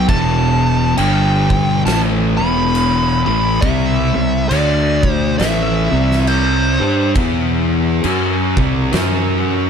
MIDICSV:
0, 0, Header, 1, 5, 480
1, 0, Start_track
1, 0, Key_signature, 1, "minor"
1, 0, Tempo, 884956
1, 44, Time_signature, 4, 2, 24, 8
1, 5261, End_track
2, 0, Start_track
2, 0, Title_t, "Lead electric guitar"
2, 0, Program_c, 0, 29
2, 49, Note_on_c, 0, 81, 99
2, 527, Note_off_c, 0, 81, 0
2, 529, Note_on_c, 0, 79, 107
2, 985, Note_off_c, 0, 79, 0
2, 1006, Note_on_c, 0, 81, 102
2, 1084, Note_off_c, 0, 81, 0
2, 1287, Note_on_c, 0, 83, 102
2, 1763, Note_off_c, 0, 83, 0
2, 1769, Note_on_c, 0, 83, 106
2, 1958, Note_on_c, 0, 76, 107
2, 1970, Note_off_c, 0, 83, 0
2, 2420, Note_off_c, 0, 76, 0
2, 2436, Note_on_c, 0, 74, 87
2, 2767, Note_off_c, 0, 74, 0
2, 2767, Note_on_c, 0, 72, 87
2, 2899, Note_off_c, 0, 72, 0
2, 2920, Note_on_c, 0, 76, 98
2, 3405, Note_on_c, 0, 72, 81
2, 3417, Note_off_c, 0, 76, 0
2, 3864, Note_off_c, 0, 72, 0
2, 5261, End_track
3, 0, Start_track
3, 0, Title_t, "Distorted electric guitar"
3, 0, Program_c, 1, 30
3, 44, Note_on_c, 1, 40, 90
3, 48, Note_on_c, 1, 47, 88
3, 50, Note_on_c, 1, 52, 101
3, 519, Note_off_c, 1, 40, 0
3, 520, Note_off_c, 1, 47, 0
3, 522, Note_off_c, 1, 52, 0
3, 526, Note_on_c, 1, 43, 78
3, 530, Note_on_c, 1, 50, 83
3, 532, Note_on_c, 1, 55, 97
3, 1000, Note_off_c, 1, 43, 0
3, 1002, Note_off_c, 1, 50, 0
3, 1003, Note_off_c, 1, 55, 0
3, 1010, Note_on_c, 1, 45, 90
3, 1012, Note_on_c, 1, 52, 88
3, 1015, Note_on_c, 1, 57, 109
3, 1286, Note_off_c, 1, 45, 0
3, 1287, Note_off_c, 1, 52, 0
3, 1288, Note_off_c, 1, 57, 0
3, 1294, Note_on_c, 1, 40, 85
3, 1298, Note_on_c, 1, 47, 91
3, 1302, Note_on_c, 1, 52, 87
3, 1764, Note_off_c, 1, 40, 0
3, 1766, Note_off_c, 1, 47, 0
3, 1768, Note_off_c, 1, 52, 0
3, 1771, Note_on_c, 1, 45, 93
3, 1775, Note_on_c, 1, 52, 90
3, 1776, Note_on_c, 1, 57, 102
3, 1959, Note_off_c, 1, 45, 0
3, 1961, Note_off_c, 1, 52, 0
3, 1962, Note_off_c, 1, 57, 0
3, 1968, Note_on_c, 1, 48, 78
3, 1972, Note_on_c, 1, 55, 91
3, 1974, Note_on_c, 1, 60, 90
3, 2245, Note_off_c, 1, 48, 0
3, 2247, Note_off_c, 1, 55, 0
3, 2248, Note_off_c, 1, 60, 0
3, 2254, Note_on_c, 1, 48, 65
3, 2256, Note_on_c, 1, 55, 78
3, 2408, Note_off_c, 1, 48, 0
3, 2409, Note_off_c, 1, 55, 0
3, 2447, Note_on_c, 1, 50, 86
3, 2449, Note_on_c, 1, 57, 91
3, 2453, Note_on_c, 1, 62, 90
3, 2921, Note_off_c, 1, 50, 0
3, 2922, Note_off_c, 1, 57, 0
3, 2923, Note_on_c, 1, 45, 97
3, 2924, Note_off_c, 1, 62, 0
3, 2926, Note_on_c, 1, 52, 100
3, 2930, Note_on_c, 1, 57, 98
3, 3202, Note_off_c, 1, 45, 0
3, 3204, Note_off_c, 1, 52, 0
3, 3204, Note_on_c, 1, 48, 75
3, 3206, Note_off_c, 1, 57, 0
3, 3209, Note_on_c, 1, 55, 86
3, 3210, Note_on_c, 1, 60, 88
3, 3680, Note_off_c, 1, 48, 0
3, 3682, Note_off_c, 1, 55, 0
3, 3683, Note_off_c, 1, 60, 0
3, 3689, Note_on_c, 1, 55, 84
3, 3691, Note_on_c, 1, 62, 89
3, 3694, Note_on_c, 1, 67, 102
3, 3878, Note_off_c, 1, 55, 0
3, 3879, Note_off_c, 1, 62, 0
3, 3881, Note_off_c, 1, 67, 0
3, 3882, Note_on_c, 1, 52, 91
3, 3885, Note_on_c, 1, 59, 92
3, 3888, Note_on_c, 1, 64, 103
3, 4358, Note_off_c, 1, 52, 0
3, 4360, Note_off_c, 1, 59, 0
3, 4361, Note_off_c, 1, 64, 0
3, 4361, Note_on_c, 1, 54, 87
3, 4362, Note_on_c, 1, 61, 90
3, 4366, Note_on_c, 1, 66, 86
3, 4641, Note_off_c, 1, 54, 0
3, 4642, Note_off_c, 1, 61, 0
3, 4644, Note_off_c, 1, 66, 0
3, 4649, Note_on_c, 1, 48, 95
3, 4654, Note_on_c, 1, 55, 104
3, 4657, Note_on_c, 1, 60, 90
3, 4837, Note_off_c, 1, 48, 0
3, 4839, Note_on_c, 1, 54, 98
3, 4841, Note_off_c, 1, 55, 0
3, 4842, Note_off_c, 1, 60, 0
3, 4843, Note_on_c, 1, 61, 92
3, 4845, Note_on_c, 1, 66, 101
3, 5261, Note_off_c, 1, 54, 0
3, 5261, Note_off_c, 1, 61, 0
3, 5261, Note_off_c, 1, 66, 0
3, 5261, End_track
4, 0, Start_track
4, 0, Title_t, "Fingered electric bass"
4, 0, Program_c, 2, 33
4, 48, Note_on_c, 2, 28, 95
4, 505, Note_off_c, 2, 28, 0
4, 529, Note_on_c, 2, 31, 93
4, 986, Note_off_c, 2, 31, 0
4, 1008, Note_on_c, 2, 33, 99
4, 1273, Note_off_c, 2, 33, 0
4, 1294, Note_on_c, 2, 28, 99
4, 1751, Note_off_c, 2, 28, 0
4, 1775, Note_on_c, 2, 33, 90
4, 1953, Note_off_c, 2, 33, 0
4, 1968, Note_on_c, 2, 36, 94
4, 2233, Note_off_c, 2, 36, 0
4, 2254, Note_on_c, 2, 36, 74
4, 2433, Note_off_c, 2, 36, 0
4, 2446, Note_on_c, 2, 38, 88
4, 2904, Note_off_c, 2, 38, 0
4, 2926, Note_on_c, 2, 33, 94
4, 3192, Note_off_c, 2, 33, 0
4, 3211, Note_on_c, 2, 36, 94
4, 3670, Note_off_c, 2, 36, 0
4, 3690, Note_on_c, 2, 43, 90
4, 3871, Note_off_c, 2, 43, 0
4, 3882, Note_on_c, 2, 40, 89
4, 4342, Note_off_c, 2, 40, 0
4, 4362, Note_on_c, 2, 42, 83
4, 4630, Note_off_c, 2, 42, 0
4, 4649, Note_on_c, 2, 36, 90
4, 4830, Note_off_c, 2, 36, 0
4, 4843, Note_on_c, 2, 42, 91
4, 5261, Note_off_c, 2, 42, 0
4, 5261, End_track
5, 0, Start_track
5, 0, Title_t, "Drums"
5, 47, Note_on_c, 9, 36, 103
5, 48, Note_on_c, 9, 49, 58
5, 102, Note_off_c, 9, 36, 0
5, 102, Note_off_c, 9, 49, 0
5, 529, Note_on_c, 9, 49, 65
5, 583, Note_off_c, 9, 49, 0
5, 815, Note_on_c, 9, 36, 77
5, 869, Note_off_c, 9, 36, 0
5, 1011, Note_on_c, 9, 49, 63
5, 1019, Note_on_c, 9, 38, 113
5, 1066, Note_off_c, 9, 49, 0
5, 1074, Note_off_c, 9, 38, 0
5, 1490, Note_on_c, 9, 49, 56
5, 1545, Note_off_c, 9, 49, 0
5, 1966, Note_on_c, 9, 36, 109
5, 1967, Note_on_c, 9, 49, 54
5, 2020, Note_off_c, 9, 36, 0
5, 2021, Note_off_c, 9, 49, 0
5, 2444, Note_on_c, 9, 49, 61
5, 2499, Note_off_c, 9, 49, 0
5, 2730, Note_on_c, 9, 36, 81
5, 2784, Note_off_c, 9, 36, 0
5, 2926, Note_on_c, 9, 49, 56
5, 2934, Note_on_c, 9, 38, 117
5, 2980, Note_off_c, 9, 49, 0
5, 2988, Note_off_c, 9, 38, 0
5, 3315, Note_on_c, 9, 38, 31
5, 3369, Note_off_c, 9, 38, 0
5, 3402, Note_on_c, 9, 49, 55
5, 3456, Note_off_c, 9, 49, 0
5, 3880, Note_on_c, 9, 49, 54
5, 3882, Note_on_c, 9, 36, 101
5, 3934, Note_off_c, 9, 49, 0
5, 3936, Note_off_c, 9, 36, 0
5, 4359, Note_on_c, 9, 49, 70
5, 4413, Note_off_c, 9, 49, 0
5, 4648, Note_on_c, 9, 36, 82
5, 4702, Note_off_c, 9, 36, 0
5, 4841, Note_on_c, 9, 49, 58
5, 4849, Note_on_c, 9, 38, 112
5, 4896, Note_off_c, 9, 49, 0
5, 4904, Note_off_c, 9, 38, 0
5, 5261, End_track
0, 0, End_of_file